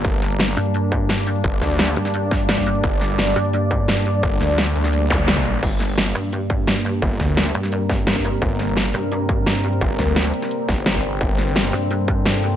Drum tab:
CC |----------------|----------------|----------------|----------------|
HH |x-x-xxxxx-x-xxxx|x-x-xxxxx-x-xxxx|x-x-xxxxx-x-xxxx|x-x-xxxxx-x-xxxx|
SH |x-xxx---x---xx--|x-xxx---x---xx--|x-xxx---x---xx--|x-xxx-x-x-x-xx--|
SD |--o-oo------o---|--o-oo-o--o-o---|--o-oo------o---|--o-oo-o--o-o---|
BD |o---------o-----|o-o-------o--o--|o---------o-----|o---------o--o--|

CC |x---------------|----------------|----------------|----------------|
HH |x-x-xxxxx-x-xxxx|x-x-xxxxx-x-xxxx|x-x-xxxxx-x-xxxx|x-x-xxxxx-x-xxxx|
SH |x-xxx---x---xx--|x-xxx---x---xx--|x-xxx---x---xx--|x-xxx---x---xx--|
SD |--o-oo------o---|--o-oo-o--o-o---|--o-oo------o---|--o-oo-o--o-o---|
BD |o---------o-----|o-o-------o--o--|o---------o-----|o-o-------o--o--|

CC |----------------|
HH |x-x-xxxxx-x-xxxx|
SH |x-xxx---x---xx--|
SD |--o-oo------o---|
BD |o---------o-----|